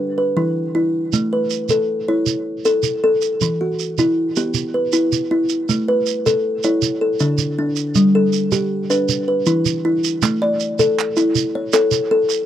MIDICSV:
0, 0, Header, 1, 4, 480
1, 0, Start_track
1, 0, Tempo, 379987
1, 1434, Time_signature, 12, 3, 24, 8
1, 9110, Tempo, 376648
1, 15796, End_track
2, 0, Start_track
2, 0, Title_t, "Kalimba"
2, 0, Program_c, 0, 108
2, 0, Note_on_c, 0, 71, 59
2, 210, Note_off_c, 0, 71, 0
2, 225, Note_on_c, 0, 71, 56
2, 463, Note_on_c, 0, 52, 75
2, 466, Note_on_c, 0, 64, 56
2, 931, Note_off_c, 0, 64, 0
2, 946, Note_on_c, 0, 64, 71
2, 948, Note_off_c, 0, 52, 0
2, 950, Note_off_c, 0, 71, 0
2, 1430, Note_off_c, 0, 64, 0
2, 1433, Note_on_c, 0, 57, 76
2, 1677, Note_on_c, 0, 71, 60
2, 1914, Note_off_c, 0, 57, 0
2, 2152, Note_on_c, 0, 69, 73
2, 2397, Note_off_c, 0, 71, 0
2, 2633, Note_on_c, 0, 73, 59
2, 2634, Note_on_c, 0, 64, 71
2, 2635, Note_off_c, 0, 69, 0
2, 3116, Note_off_c, 0, 64, 0
2, 3353, Note_on_c, 0, 69, 78
2, 3355, Note_off_c, 0, 73, 0
2, 3821, Note_off_c, 0, 69, 0
2, 3836, Note_on_c, 0, 69, 76
2, 4317, Note_off_c, 0, 69, 0
2, 4318, Note_on_c, 0, 52, 72
2, 4559, Note_on_c, 0, 66, 60
2, 4798, Note_off_c, 0, 52, 0
2, 5039, Note_on_c, 0, 64, 83
2, 5278, Note_off_c, 0, 66, 0
2, 5518, Note_off_c, 0, 64, 0
2, 5521, Note_on_c, 0, 59, 71
2, 5521, Note_on_c, 0, 67, 59
2, 5991, Note_on_c, 0, 71, 60
2, 5999, Note_off_c, 0, 59, 0
2, 6228, Note_on_c, 0, 64, 79
2, 6239, Note_off_c, 0, 67, 0
2, 6694, Note_off_c, 0, 64, 0
2, 6709, Note_on_c, 0, 64, 69
2, 6713, Note_off_c, 0, 71, 0
2, 7187, Note_on_c, 0, 57, 71
2, 7192, Note_off_c, 0, 64, 0
2, 7433, Note_on_c, 0, 71, 63
2, 7670, Note_off_c, 0, 57, 0
2, 7909, Note_on_c, 0, 69, 74
2, 8152, Note_off_c, 0, 71, 0
2, 8390, Note_off_c, 0, 69, 0
2, 8394, Note_on_c, 0, 64, 75
2, 8394, Note_on_c, 0, 73, 63
2, 8632, Note_off_c, 0, 64, 0
2, 8859, Note_on_c, 0, 69, 60
2, 8871, Note_off_c, 0, 73, 0
2, 9099, Note_on_c, 0, 62, 62
2, 9101, Note_on_c, 0, 50, 81
2, 9571, Note_off_c, 0, 62, 0
2, 9586, Note_off_c, 0, 69, 0
2, 9586, Note_on_c, 0, 62, 73
2, 9587, Note_off_c, 0, 50, 0
2, 10058, Note_on_c, 0, 55, 74
2, 10071, Note_off_c, 0, 62, 0
2, 10308, Note_on_c, 0, 69, 64
2, 10547, Note_off_c, 0, 55, 0
2, 10779, Note_on_c, 0, 67, 78
2, 11033, Note_off_c, 0, 69, 0
2, 11262, Note_on_c, 0, 71, 60
2, 11264, Note_on_c, 0, 62, 69
2, 11268, Note_off_c, 0, 67, 0
2, 11511, Note_off_c, 0, 62, 0
2, 11731, Note_off_c, 0, 71, 0
2, 11746, Note_on_c, 0, 71, 60
2, 11983, Note_on_c, 0, 52, 80
2, 11984, Note_on_c, 0, 64, 66
2, 12456, Note_off_c, 0, 64, 0
2, 12470, Note_off_c, 0, 52, 0
2, 12471, Note_on_c, 0, 64, 76
2, 12472, Note_off_c, 0, 71, 0
2, 12954, Note_off_c, 0, 64, 0
2, 12955, Note_on_c, 0, 57, 78
2, 13196, Note_on_c, 0, 74, 72
2, 13436, Note_off_c, 0, 57, 0
2, 13674, Note_on_c, 0, 69, 83
2, 13916, Note_off_c, 0, 74, 0
2, 14151, Note_on_c, 0, 64, 79
2, 14155, Note_off_c, 0, 69, 0
2, 14632, Note_off_c, 0, 64, 0
2, 14642, Note_on_c, 0, 73, 65
2, 14857, Note_off_c, 0, 73, 0
2, 14873, Note_on_c, 0, 69, 87
2, 14873, Note_on_c, 0, 73, 67
2, 15339, Note_off_c, 0, 69, 0
2, 15354, Note_on_c, 0, 69, 82
2, 15591, Note_off_c, 0, 73, 0
2, 15796, Note_off_c, 0, 69, 0
2, 15796, End_track
3, 0, Start_track
3, 0, Title_t, "Shekere"
3, 1424, Note_on_c, 9, 82, 60
3, 1551, Note_off_c, 9, 82, 0
3, 1896, Note_on_c, 9, 82, 45
3, 2022, Note_off_c, 9, 82, 0
3, 2131, Note_on_c, 9, 82, 66
3, 2258, Note_off_c, 9, 82, 0
3, 2859, Note_on_c, 9, 82, 69
3, 2985, Note_off_c, 9, 82, 0
3, 3347, Note_on_c, 9, 82, 55
3, 3473, Note_off_c, 9, 82, 0
3, 3573, Note_on_c, 9, 82, 72
3, 3700, Note_off_c, 9, 82, 0
3, 4060, Note_on_c, 9, 82, 54
3, 4187, Note_off_c, 9, 82, 0
3, 4307, Note_on_c, 9, 82, 73
3, 4434, Note_off_c, 9, 82, 0
3, 4789, Note_on_c, 9, 82, 50
3, 4916, Note_off_c, 9, 82, 0
3, 5027, Note_on_c, 9, 82, 72
3, 5153, Note_off_c, 9, 82, 0
3, 5507, Note_on_c, 9, 82, 54
3, 5633, Note_off_c, 9, 82, 0
3, 5737, Note_on_c, 9, 82, 76
3, 5863, Note_off_c, 9, 82, 0
3, 6219, Note_on_c, 9, 82, 63
3, 6345, Note_off_c, 9, 82, 0
3, 6472, Note_on_c, 9, 82, 74
3, 6598, Note_off_c, 9, 82, 0
3, 6936, Note_on_c, 9, 82, 56
3, 7063, Note_off_c, 9, 82, 0
3, 7188, Note_on_c, 9, 82, 65
3, 7315, Note_off_c, 9, 82, 0
3, 7658, Note_on_c, 9, 82, 56
3, 7784, Note_off_c, 9, 82, 0
3, 7911, Note_on_c, 9, 82, 70
3, 8038, Note_off_c, 9, 82, 0
3, 8378, Note_on_c, 9, 82, 58
3, 8504, Note_off_c, 9, 82, 0
3, 8616, Note_on_c, 9, 82, 82
3, 8742, Note_off_c, 9, 82, 0
3, 9088, Note_on_c, 9, 82, 60
3, 9215, Note_off_c, 9, 82, 0
3, 9325, Note_on_c, 9, 82, 76
3, 9452, Note_off_c, 9, 82, 0
3, 9807, Note_on_c, 9, 82, 64
3, 9934, Note_off_c, 9, 82, 0
3, 10051, Note_on_c, 9, 82, 70
3, 10178, Note_off_c, 9, 82, 0
3, 10530, Note_on_c, 9, 82, 56
3, 10658, Note_off_c, 9, 82, 0
3, 10774, Note_on_c, 9, 82, 68
3, 10901, Note_off_c, 9, 82, 0
3, 11267, Note_on_c, 9, 82, 58
3, 11394, Note_off_c, 9, 82, 0
3, 11501, Note_on_c, 9, 82, 77
3, 11628, Note_off_c, 9, 82, 0
3, 11975, Note_on_c, 9, 82, 63
3, 12103, Note_off_c, 9, 82, 0
3, 12223, Note_on_c, 9, 82, 80
3, 12350, Note_off_c, 9, 82, 0
3, 12714, Note_on_c, 9, 82, 64
3, 12841, Note_off_c, 9, 82, 0
3, 12945, Note_on_c, 9, 82, 76
3, 13072, Note_off_c, 9, 82, 0
3, 13425, Note_on_c, 9, 82, 61
3, 13553, Note_off_c, 9, 82, 0
3, 13671, Note_on_c, 9, 82, 78
3, 13798, Note_off_c, 9, 82, 0
3, 14147, Note_on_c, 9, 82, 69
3, 14274, Note_off_c, 9, 82, 0
3, 14387, Note_on_c, 9, 82, 85
3, 14515, Note_off_c, 9, 82, 0
3, 14861, Note_on_c, 9, 82, 65
3, 14989, Note_off_c, 9, 82, 0
3, 15102, Note_on_c, 9, 82, 83
3, 15229, Note_off_c, 9, 82, 0
3, 15588, Note_on_c, 9, 82, 65
3, 15715, Note_off_c, 9, 82, 0
3, 15796, End_track
4, 0, Start_track
4, 0, Title_t, "Drums"
4, 12960, Note_on_c, 9, 39, 53
4, 13087, Note_off_c, 9, 39, 0
4, 13203, Note_on_c, 9, 39, 17
4, 13331, Note_off_c, 9, 39, 0
4, 13928, Note_on_c, 9, 39, 61
4, 14056, Note_off_c, 9, 39, 0
4, 14164, Note_on_c, 9, 39, 17
4, 14292, Note_off_c, 9, 39, 0
4, 14881, Note_on_c, 9, 39, 67
4, 15008, Note_off_c, 9, 39, 0
4, 15124, Note_on_c, 9, 39, 19
4, 15252, Note_off_c, 9, 39, 0
4, 15586, Note_on_c, 9, 39, 18
4, 15713, Note_off_c, 9, 39, 0
4, 15796, End_track
0, 0, End_of_file